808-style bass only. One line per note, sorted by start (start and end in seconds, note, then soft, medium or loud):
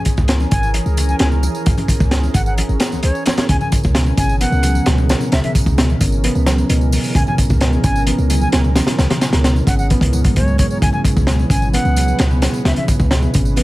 0.18 0.46 C#2 medium
0.52 0.80 G#1 loud
0.86 1.14 C#2 medium
1.20 1.48 C#2 medium
1.67 1.74 C#2 loud
2.00 2.29 C#2 medium
2.35 2.63 G#1 loud
2.69 2.77 G#1 loud
2.92 3.01 C#2 soft
3.04 3.11 C#2 medium
3.49 3.57 C#2 medium
3.85 4.12 C#2 medium
4.18 4.46 G#1 loud
4.52 4.80 C#2 medium
4.86 5.15 C#2 medium
5.32 5.40 C#2 medium
5.66 5.95 C#2 medium
6.01 6.29 G#1 loud
6.35 6.64 C#2 medium
6.70 6.98 C#2 medium
7.15 7.23 C#2 loud
7.50 7.78 C#2 medium
7.84 8.12 G#1 loud
8.19 8.47 C#2 medium
8.53 8.81 C#2 medium
8.99 9.06 C#2 loud
9.33 9.61 C#2 medium
9.67 9.96 G#1 loud
10.01 10.30 C#2 medium
10.37 10.65 C#2 medium
10.82 10.90 C#2 loud
11.17 11.45 C#2 medium
11.50 11.79 G#1 loud
11.85 12.13 C#2 medium
12.20 12.48 C#2 medium
12.65 12.73 C#2 loud
13.00 13.28 C#2 medium
13.35 13.63 G#1 loud